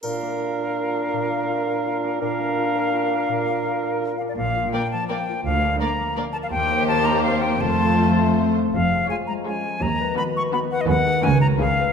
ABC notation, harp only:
X:1
M:3/4
L:1/8
Q:1/4=167
K:Bb
V:1 name="Harp"
B,, B, F B F D | B,, B, F B F D | B,, B, F B F D | B,, B, F B F D |
B,, F D F, B, F | D, B D B, D B | E, B G B, C B | F, A F A, C A |
[K:F#] E, G E G, C G | D, B F B, D B | D, [DG] C, [FA] C, [GB] |]